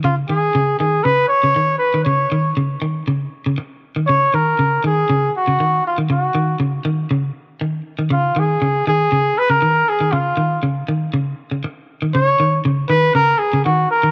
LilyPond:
<<
  \new Staff \with { instrumentName = "Trumpet" } { \time 4/4 \key des \mixolydian \tempo 4 = 119 f'8 aes'4 aes'8 ces''8 des''4 ces''8 | des''4 r2. | des''8 bes'4 aes'4 ges'4 f'8 | ges'4 r2. |
f'8 aes'4 aes'4 ces''16 bes'8. aes'8 | f'4 r2. | des''4 r8 ces''8 bes'8 aes'8 ges'8 bes'8 | }
  \new Staff \with { instrumentName = "Clean electric guitar" } { \clef bass \time 4/4 \key des \mixolydian des8 ees8 des8 ees8 des8 r16 des16 ees8 r16 ees16 | des8 ees8 des8 ees8 des8 r16 des16 r8. ees16 | des8 ees8 des8 ees8 des8 r16 des16 ees8 r16 ees16 | des8 ees8 des8 ees8 des8 r8 ees8 r16 ees16 |
des8 ees8 des8 ees8 des8 r16 des16 ees8 r16 ees16 | des8 ees8 des8 ees8 des8 r16 des16 r8. ees16 | des8 ees8 des8 ees8 des8 r16 des16 ees8 r16 ees16 | }
>>